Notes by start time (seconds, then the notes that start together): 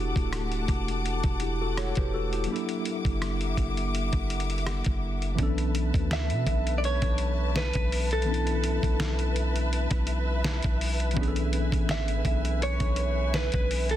Already playing: E1 A3 D4 E4 F#4 G4 F#5 A5 D6
0.16 D1, kick, closed hi-hat
0.33 cross-stick, closed hi-hat
0.52 closed hi-hat
0.68 E1, kick, closed hi-hat
0.88 closed hi-hat
1.06 closed hi-hat
1.23 E1, kick, closed hi-hat
1.40 E4 G4, closed hi-hat
1.61 F#4 A4
1.77 A4 C#5, cross-stick, closed hi-hat
1.95 E1 G4 B4, kick, closed hi-hat
2.14 F#4 A4
2.33 E4 G4, closed hi-hat
2.44 F#3, closed hi-hat
2.48 A#3 D4 E4 E5 F#5 D6
2.54 A4, closed hi-hat
2.69 closed hi-hat
2.85 closed hi-hat
3.05 F#1, kick, closed hi-hat
3.22 cross-stick, closed hi-hat
3.41 closed hi-hat
3.57 F#1, kick, closed hi-hat
3.77 closed hi-hat
3.95 closed hi-hat
4.13 F#1, kick, closed hi-hat
4.30 closed hi-hat
4.40 closed hi-hat
4.50 closed hi-hat
4.58 closed hi-hat
4.67 cross-stick, closed hi-hat
4.84 F#1, kick, closed hi-hat
5.22 closed hi-hat
5.35 B1 E3 B3 C#4 B4 E5 A5, kick, closed hi-hat
5.41 D4 A4
5.58 closed hi-hat
5.75 closed hi-hat
5.94 D2, kick, closed hi-hat
6.11 E5, snare, closed hi-hat
6.30 B2, closed hi-hat
6.47 B1, kick, closed hi-hat
6.67 closed hi-hat
6.78 D5
6.84 C#5, closed hi-hat
7.02 B1, kick, closed hi-hat
7.18 closed hi-hat
7.56 B4, snare, closed hi-hat
7.73 B1, kick, closed hi-hat
7.92 open hi-hat
8.11 A4, closed hi-hat
8.22 E3, closed hi-hat
8.26 B3 C#4 D4
8.32 E4, closed hi-hat
8.47 closed hi-hat
8.64 closed hi-hat
8.83 B1, kick, closed hi-hat
9.00 snare, closed hi-hat
9.19 closed hi-hat
9.36 closed hi-hat
9.56 closed hi-hat
9.73 closed hi-hat
9.91 B1, kick, closed hi-hat
10.07 closed hi-hat
10.44 snare, closed hi-hat
10.62 B1, kick, closed hi-hat
10.81 open hi-hat
11.00 closed hi-hat
11.11 E3, closed hi-hat
11.15 B1 B3 C#4 D4 G#5, kick
11.21 G#4, closed hi-hat
11.28 A4
11.36 closed hi-hat
11.53 closed hi-hat
11.72 A1, kick, closed hi-hat
11.89 E5, snare, closed hi-hat
12.08 closed hi-hat
12.25 B1, kick, closed hi-hat
12.45 closed hi-hat
12.62 C#5, closed hi-hat
12.80 B1, kick, closed hi-hat
12.96 closed hi-hat
13.34 B4, snare, closed hi-hat
13.52 B1, kick, closed hi-hat
13.71 open hi-hat
13.89 A4, closed hi-hat